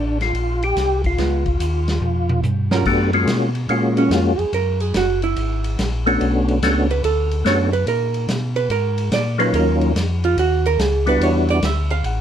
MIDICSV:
0, 0, Header, 1, 5, 480
1, 0, Start_track
1, 0, Key_signature, 6, "major"
1, 0, Tempo, 417827
1, 1353, Time_signature, 4, 2, 24, 8
1, 14026, End_track
2, 0, Start_track
2, 0, Title_t, "Hollow-body jazz guitar"
2, 0, Program_c, 0, 26
2, 1360, Note_on_c, 0, 56, 45
2, 1367, Note_on_c, 0, 59, 48
2, 1372, Note_on_c, 0, 65, 47
2, 1642, Note_off_c, 0, 56, 0
2, 1646, Note_off_c, 0, 59, 0
2, 1649, Note_off_c, 0, 65, 0
2, 3116, Note_on_c, 0, 54, 48
2, 3118, Note_on_c, 0, 61, 53
2, 3126, Note_on_c, 0, 65, 59
2, 3129, Note_on_c, 0, 70, 52
2, 3260, Note_off_c, 0, 54, 0
2, 3261, Note_off_c, 0, 61, 0
2, 3265, Note_off_c, 0, 65, 0
2, 3266, Note_off_c, 0, 70, 0
2, 4574, Note_on_c, 0, 61, 74
2, 4721, Note_off_c, 0, 61, 0
2, 4738, Note_on_c, 0, 65, 68
2, 5044, Note_off_c, 0, 65, 0
2, 5044, Note_on_c, 0, 68, 80
2, 5196, Note_off_c, 0, 68, 0
2, 5220, Note_on_c, 0, 70, 85
2, 5526, Note_off_c, 0, 70, 0
2, 5526, Note_on_c, 0, 68, 87
2, 5677, Note_off_c, 0, 68, 0
2, 5708, Note_on_c, 0, 66, 73
2, 6000, Note_off_c, 0, 66, 0
2, 6015, Note_on_c, 0, 64, 68
2, 7081, Note_off_c, 0, 64, 0
2, 7939, Note_on_c, 0, 71, 78
2, 8084, Note_off_c, 0, 71, 0
2, 8097, Note_on_c, 0, 69, 78
2, 8534, Note_off_c, 0, 69, 0
2, 8578, Note_on_c, 0, 73, 79
2, 8876, Note_off_c, 0, 73, 0
2, 8883, Note_on_c, 0, 71, 85
2, 9036, Note_off_c, 0, 71, 0
2, 9055, Note_on_c, 0, 70, 77
2, 9493, Note_off_c, 0, 70, 0
2, 9836, Note_on_c, 0, 71, 93
2, 9993, Note_off_c, 0, 71, 0
2, 10010, Note_on_c, 0, 70, 79
2, 10450, Note_off_c, 0, 70, 0
2, 10495, Note_on_c, 0, 74, 88
2, 10795, Note_off_c, 0, 74, 0
2, 10801, Note_on_c, 0, 71, 80
2, 10956, Note_off_c, 0, 71, 0
2, 10977, Note_on_c, 0, 70, 75
2, 11414, Note_off_c, 0, 70, 0
2, 11772, Note_on_c, 0, 65, 77
2, 11921, Note_off_c, 0, 65, 0
2, 11939, Note_on_c, 0, 66, 76
2, 12237, Note_off_c, 0, 66, 0
2, 12251, Note_on_c, 0, 70, 105
2, 12422, Note_off_c, 0, 70, 0
2, 12422, Note_on_c, 0, 68, 76
2, 12718, Note_off_c, 0, 68, 0
2, 12737, Note_on_c, 0, 71, 88
2, 12883, Note_off_c, 0, 71, 0
2, 12906, Note_on_c, 0, 73, 75
2, 13199, Note_off_c, 0, 73, 0
2, 13216, Note_on_c, 0, 74, 94
2, 13363, Note_off_c, 0, 74, 0
2, 13386, Note_on_c, 0, 76, 86
2, 13680, Note_off_c, 0, 76, 0
2, 13684, Note_on_c, 0, 77, 89
2, 13861, Note_off_c, 0, 77, 0
2, 13861, Note_on_c, 0, 78, 92
2, 14026, Note_off_c, 0, 78, 0
2, 14026, End_track
3, 0, Start_track
3, 0, Title_t, "Tonewheel organ"
3, 0, Program_c, 1, 16
3, 0, Note_on_c, 1, 62, 83
3, 209, Note_off_c, 1, 62, 0
3, 253, Note_on_c, 1, 65, 91
3, 732, Note_on_c, 1, 67, 111
3, 736, Note_off_c, 1, 65, 0
3, 1168, Note_off_c, 1, 67, 0
3, 1222, Note_on_c, 1, 65, 77
3, 2764, Note_off_c, 1, 65, 0
3, 3291, Note_on_c, 1, 57, 61
3, 3291, Note_on_c, 1, 62, 57
3, 3294, Note_on_c, 1, 59, 60
3, 3295, Note_on_c, 1, 66, 57
3, 3296, Note_on_c, 1, 67, 63
3, 3568, Note_off_c, 1, 57, 0
3, 3568, Note_off_c, 1, 62, 0
3, 3570, Note_off_c, 1, 59, 0
3, 3571, Note_off_c, 1, 66, 0
3, 3571, Note_off_c, 1, 67, 0
3, 3604, Note_on_c, 1, 56, 61
3, 3605, Note_on_c, 1, 58, 58
3, 3607, Note_on_c, 1, 61, 62
3, 3612, Note_on_c, 1, 66, 72
3, 3613, Note_on_c, 1, 65, 56
3, 4015, Note_off_c, 1, 56, 0
3, 4015, Note_off_c, 1, 58, 0
3, 4016, Note_off_c, 1, 61, 0
3, 4019, Note_off_c, 1, 65, 0
3, 4019, Note_off_c, 1, 66, 0
3, 4242, Note_on_c, 1, 58, 58
3, 4243, Note_on_c, 1, 56, 66
3, 4249, Note_on_c, 1, 61, 55
3, 4254, Note_on_c, 1, 65, 60
3, 4255, Note_on_c, 1, 66, 72
3, 4973, Note_off_c, 1, 58, 0
3, 4974, Note_off_c, 1, 56, 0
3, 4976, Note_off_c, 1, 61, 0
3, 4979, Note_off_c, 1, 65, 0
3, 4979, Note_off_c, 1, 66, 0
3, 6965, Note_on_c, 1, 57, 63
3, 6968, Note_on_c, 1, 59, 59
3, 6972, Note_on_c, 1, 61, 58
3, 6972, Note_on_c, 1, 62, 60
3, 6978, Note_on_c, 1, 66, 73
3, 7570, Note_off_c, 1, 57, 0
3, 7571, Note_off_c, 1, 59, 0
3, 7573, Note_off_c, 1, 61, 0
3, 7573, Note_off_c, 1, 62, 0
3, 7576, Note_off_c, 1, 66, 0
3, 7618, Note_on_c, 1, 57, 60
3, 7619, Note_on_c, 1, 59, 57
3, 7624, Note_on_c, 1, 61, 59
3, 7625, Note_on_c, 1, 62, 56
3, 7629, Note_on_c, 1, 66, 67
3, 7893, Note_off_c, 1, 57, 0
3, 7894, Note_off_c, 1, 59, 0
3, 7896, Note_off_c, 1, 61, 0
3, 7896, Note_off_c, 1, 62, 0
3, 7899, Note_off_c, 1, 66, 0
3, 8553, Note_on_c, 1, 59, 51
3, 8560, Note_on_c, 1, 57, 51
3, 8565, Note_on_c, 1, 61, 54
3, 8566, Note_on_c, 1, 62, 48
3, 8566, Note_on_c, 1, 66, 59
3, 8841, Note_off_c, 1, 59, 0
3, 8844, Note_off_c, 1, 57, 0
3, 8847, Note_off_c, 1, 61, 0
3, 8847, Note_off_c, 1, 62, 0
3, 8847, Note_off_c, 1, 66, 0
3, 10780, Note_on_c, 1, 58, 55
3, 10785, Note_on_c, 1, 54, 55
3, 10789, Note_on_c, 1, 63, 53
3, 10791, Note_on_c, 1, 61, 52
3, 10792, Note_on_c, 1, 65, 65
3, 11398, Note_off_c, 1, 58, 0
3, 11400, Note_off_c, 1, 54, 0
3, 11402, Note_off_c, 1, 63, 0
3, 11403, Note_off_c, 1, 61, 0
3, 11404, Note_off_c, 1, 65, 0
3, 12707, Note_on_c, 1, 55, 68
3, 12713, Note_on_c, 1, 59, 62
3, 12714, Note_on_c, 1, 64, 62
3, 12719, Note_on_c, 1, 62, 64
3, 12722, Note_on_c, 1, 66, 73
3, 13320, Note_off_c, 1, 55, 0
3, 13323, Note_off_c, 1, 59, 0
3, 13324, Note_off_c, 1, 64, 0
3, 13326, Note_off_c, 1, 62, 0
3, 13328, Note_off_c, 1, 66, 0
3, 14026, End_track
4, 0, Start_track
4, 0, Title_t, "Tonewheel organ"
4, 0, Program_c, 2, 16
4, 0, Note_on_c, 2, 33, 85
4, 370, Note_off_c, 2, 33, 0
4, 379, Note_on_c, 2, 34, 78
4, 851, Note_off_c, 2, 34, 0
4, 867, Note_on_c, 2, 36, 82
4, 1335, Note_off_c, 2, 36, 0
4, 1345, Note_on_c, 2, 37, 78
4, 1815, Note_off_c, 2, 37, 0
4, 1830, Note_on_c, 2, 39, 81
4, 2297, Note_off_c, 2, 39, 0
4, 2309, Note_on_c, 2, 41, 75
4, 2777, Note_off_c, 2, 41, 0
4, 2785, Note_on_c, 2, 43, 89
4, 3255, Note_off_c, 2, 43, 0
4, 3271, Note_on_c, 2, 42, 88
4, 3738, Note_off_c, 2, 42, 0
4, 3743, Note_on_c, 2, 47, 86
4, 4214, Note_off_c, 2, 47, 0
4, 4233, Note_on_c, 2, 46, 82
4, 4700, Note_off_c, 2, 46, 0
4, 4708, Note_on_c, 2, 41, 87
4, 5007, Note_off_c, 2, 41, 0
4, 5037, Note_on_c, 2, 41, 38
4, 5117, Note_off_c, 2, 41, 0
4, 5198, Note_on_c, 2, 42, 81
4, 5662, Note_off_c, 2, 42, 0
4, 5684, Note_on_c, 2, 30, 89
4, 6146, Note_off_c, 2, 30, 0
4, 6160, Note_on_c, 2, 32, 78
4, 6624, Note_off_c, 2, 32, 0
4, 6639, Note_on_c, 2, 34, 84
4, 7103, Note_off_c, 2, 34, 0
4, 7128, Note_on_c, 2, 35, 91
4, 7588, Note_off_c, 2, 35, 0
4, 7602, Note_on_c, 2, 37, 86
4, 8065, Note_off_c, 2, 37, 0
4, 8079, Note_on_c, 2, 38, 82
4, 8544, Note_off_c, 2, 38, 0
4, 8558, Note_on_c, 2, 42, 90
4, 9023, Note_off_c, 2, 42, 0
4, 9034, Note_on_c, 2, 46, 82
4, 9501, Note_off_c, 2, 46, 0
4, 9514, Note_on_c, 2, 47, 85
4, 9981, Note_off_c, 2, 47, 0
4, 9985, Note_on_c, 2, 44, 80
4, 10457, Note_off_c, 2, 44, 0
4, 10472, Note_on_c, 2, 46, 90
4, 10940, Note_off_c, 2, 46, 0
4, 10951, Note_on_c, 2, 39, 85
4, 11420, Note_off_c, 2, 39, 0
4, 11432, Note_on_c, 2, 41, 90
4, 11900, Note_off_c, 2, 41, 0
4, 11907, Note_on_c, 2, 39, 80
4, 12378, Note_off_c, 2, 39, 0
4, 12387, Note_on_c, 2, 37, 92
4, 12857, Note_off_c, 2, 37, 0
4, 12861, Note_on_c, 2, 40, 90
4, 13334, Note_off_c, 2, 40, 0
4, 13343, Note_on_c, 2, 38, 90
4, 13815, Note_off_c, 2, 38, 0
4, 13828, Note_on_c, 2, 33, 85
4, 14026, Note_off_c, 2, 33, 0
4, 14026, End_track
5, 0, Start_track
5, 0, Title_t, "Drums"
5, 237, Note_on_c, 9, 51, 42
5, 240, Note_on_c, 9, 38, 29
5, 352, Note_off_c, 9, 51, 0
5, 355, Note_off_c, 9, 38, 0
5, 397, Note_on_c, 9, 51, 46
5, 512, Note_off_c, 9, 51, 0
5, 717, Note_on_c, 9, 51, 45
5, 832, Note_off_c, 9, 51, 0
5, 879, Note_on_c, 9, 44, 56
5, 879, Note_on_c, 9, 51, 57
5, 882, Note_on_c, 9, 38, 33
5, 994, Note_off_c, 9, 44, 0
5, 994, Note_off_c, 9, 51, 0
5, 997, Note_off_c, 9, 38, 0
5, 1196, Note_on_c, 9, 51, 41
5, 1197, Note_on_c, 9, 36, 47
5, 1311, Note_off_c, 9, 36, 0
5, 1311, Note_off_c, 9, 51, 0
5, 1358, Note_on_c, 9, 51, 53
5, 1362, Note_on_c, 9, 38, 37
5, 1473, Note_off_c, 9, 51, 0
5, 1477, Note_off_c, 9, 38, 0
5, 1673, Note_on_c, 9, 51, 41
5, 1677, Note_on_c, 9, 36, 48
5, 1788, Note_off_c, 9, 51, 0
5, 1792, Note_off_c, 9, 36, 0
5, 1840, Note_on_c, 9, 44, 59
5, 1840, Note_on_c, 9, 51, 63
5, 1955, Note_off_c, 9, 44, 0
5, 1955, Note_off_c, 9, 51, 0
5, 2156, Note_on_c, 9, 51, 40
5, 2160, Note_on_c, 9, 38, 49
5, 2271, Note_off_c, 9, 51, 0
5, 2275, Note_off_c, 9, 38, 0
5, 2319, Note_on_c, 9, 48, 38
5, 2434, Note_off_c, 9, 48, 0
5, 2636, Note_on_c, 9, 48, 65
5, 2751, Note_off_c, 9, 48, 0
5, 2796, Note_on_c, 9, 44, 47
5, 2799, Note_on_c, 9, 48, 55
5, 2911, Note_off_c, 9, 44, 0
5, 2914, Note_off_c, 9, 48, 0
5, 3116, Note_on_c, 9, 38, 78
5, 3231, Note_off_c, 9, 38, 0
5, 3278, Note_on_c, 9, 49, 66
5, 3279, Note_on_c, 9, 36, 60
5, 3393, Note_off_c, 9, 49, 0
5, 3394, Note_off_c, 9, 36, 0
5, 3597, Note_on_c, 9, 51, 44
5, 3712, Note_off_c, 9, 51, 0
5, 3761, Note_on_c, 9, 44, 60
5, 3761, Note_on_c, 9, 51, 68
5, 3765, Note_on_c, 9, 38, 71
5, 3876, Note_off_c, 9, 44, 0
5, 3876, Note_off_c, 9, 51, 0
5, 3880, Note_off_c, 9, 38, 0
5, 4077, Note_on_c, 9, 51, 41
5, 4192, Note_off_c, 9, 51, 0
5, 4239, Note_on_c, 9, 51, 54
5, 4353, Note_off_c, 9, 51, 0
5, 4559, Note_on_c, 9, 51, 47
5, 4674, Note_off_c, 9, 51, 0
5, 4722, Note_on_c, 9, 44, 55
5, 4722, Note_on_c, 9, 51, 67
5, 4726, Note_on_c, 9, 38, 69
5, 4837, Note_off_c, 9, 44, 0
5, 4837, Note_off_c, 9, 51, 0
5, 4841, Note_off_c, 9, 38, 0
5, 5041, Note_on_c, 9, 51, 41
5, 5156, Note_off_c, 9, 51, 0
5, 5202, Note_on_c, 9, 51, 53
5, 5317, Note_off_c, 9, 51, 0
5, 5517, Note_on_c, 9, 51, 45
5, 5632, Note_off_c, 9, 51, 0
5, 5676, Note_on_c, 9, 44, 59
5, 5676, Note_on_c, 9, 51, 70
5, 5680, Note_on_c, 9, 38, 67
5, 5791, Note_off_c, 9, 44, 0
5, 5791, Note_off_c, 9, 51, 0
5, 5795, Note_off_c, 9, 38, 0
5, 5998, Note_on_c, 9, 51, 42
5, 6113, Note_off_c, 9, 51, 0
5, 6161, Note_on_c, 9, 51, 61
5, 6276, Note_off_c, 9, 51, 0
5, 6481, Note_on_c, 9, 51, 50
5, 6596, Note_off_c, 9, 51, 0
5, 6647, Note_on_c, 9, 44, 56
5, 6647, Note_on_c, 9, 51, 67
5, 6651, Note_on_c, 9, 38, 67
5, 6762, Note_off_c, 9, 44, 0
5, 6762, Note_off_c, 9, 51, 0
5, 6766, Note_off_c, 9, 38, 0
5, 6969, Note_on_c, 9, 51, 45
5, 7084, Note_off_c, 9, 51, 0
5, 7131, Note_on_c, 9, 51, 58
5, 7246, Note_off_c, 9, 51, 0
5, 7448, Note_on_c, 9, 51, 45
5, 7563, Note_off_c, 9, 51, 0
5, 7611, Note_on_c, 9, 44, 63
5, 7611, Note_on_c, 9, 51, 76
5, 7614, Note_on_c, 9, 38, 65
5, 7726, Note_off_c, 9, 44, 0
5, 7726, Note_off_c, 9, 51, 0
5, 7729, Note_off_c, 9, 38, 0
5, 7931, Note_on_c, 9, 51, 44
5, 8046, Note_off_c, 9, 51, 0
5, 8087, Note_on_c, 9, 51, 63
5, 8201, Note_off_c, 9, 51, 0
5, 8401, Note_on_c, 9, 51, 45
5, 8516, Note_off_c, 9, 51, 0
5, 8565, Note_on_c, 9, 44, 53
5, 8565, Note_on_c, 9, 51, 67
5, 8568, Note_on_c, 9, 38, 64
5, 8680, Note_off_c, 9, 44, 0
5, 8680, Note_off_c, 9, 51, 0
5, 8683, Note_off_c, 9, 38, 0
5, 8882, Note_on_c, 9, 51, 44
5, 8997, Note_off_c, 9, 51, 0
5, 9039, Note_on_c, 9, 51, 61
5, 9154, Note_off_c, 9, 51, 0
5, 9352, Note_on_c, 9, 51, 46
5, 9467, Note_off_c, 9, 51, 0
5, 9518, Note_on_c, 9, 44, 55
5, 9518, Note_on_c, 9, 51, 62
5, 9521, Note_on_c, 9, 38, 75
5, 9632, Note_off_c, 9, 44, 0
5, 9632, Note_off_c, 9, 51, 0
5, 9636, Note_off_c, 9, 38, 0
5, 9832, Note_on_c, 9, 51, 45
5, 9947, Note_off_c, 9, 51, 0
5, 9993, Note_on_c, 9, 51, 54
5, 10108, Note_off_c, 9, 51, 0
5, 10312, Note_on_c, 9, 51, 49
5, 10427, Note_off_c, 9, 51, 0
5, 10473, Note_on_c, 9, 44, 60
5, 10473, Note_on_c, 9, 51, 73
5, 10477, Note_on_c, 9, 38, 72
5, 10588, Note_off_c, 9, 44, 0
5, 10588, Note_off_c, 9, 51, 0
5, 10591, Note_off_c, 9, 38, 0
5, 10793, Note_on_c, 9, 51, 49
5, 10908, Note_off_c, 9, 51, 0
5, 10955, Note_on_c, 9, 51, 62
5, 11069, Note_off_c, 9, 51, 0
5, 11272, Note_on_c, 9, 51, 43
5, 11387, Note_off_c, 9, 51, 0
5, 11441, Note_on_c, 9, 44, 64
5, 11441, Note_on_c, 9, 51, 69
5, 11444, Note_on_c, 9, 38, 70
5, 11556, Note_off_c, 9, 44, 0
5, 11556, Note_off_c, 9, 51, 0
5, 11559, Note_off_c, 9, 38, 0
5, 11761, Note_on_c, 9, 51, 45
5, 11875, Note_off_c, 9, 51, 0
5, 11920, Note_on_c, 9, 51, 61
5, 12035, Note_off_c, 9, 51, 0
5, 12240, Note_on_c, 9, 51, 48
5, 12355, Note_off_c, 9, 51, 0
5, 12400, Note_on_c, 9, 44, 52
5, 12400, Note_on_c, 9, 51, 75
5, 12404, Note_on_c, 9, 38, 66
5, 12515, Note_off_c, 9, 44, 0
5, 12515, Note_off_c, 9, 51, 0
5, 12519, Note_off_c, 9, 38, 0
5, 12712, Note_on_c, 9, 51, 49
5, 12827, Note_off_c, 9, 51, 0
5, 12882, Note_on_c, 9, 51, 64
5, 12996, Note_off_c, 9, 51, 0
5, 13194, Note_on_c, 9, 51, 45
5, 13309, Note_off_c, 9, 51, 0
5, 13354, Note_on_c, 9, 44, 57
5, 13354, Note_on_c, 9, 51, 72
5, 13358, Note_on_c, 9, 38, 72
5, 13469, Note_off_c, 9, 44, 0
5, 13469, Note_off_c, 9, 51, 0
5, 13473, Note_off_c, 9, 38, 0
5, 13674, Note_on_c, 9, 51, 49
5, 13788, Note_off_c, 9, 51, 0
5, 13833, Note_on_c, 9, 51, 57
5, 13948, Note_off_c, 9, 51, 0
5, 14026, End_track
0, 0, End_of_file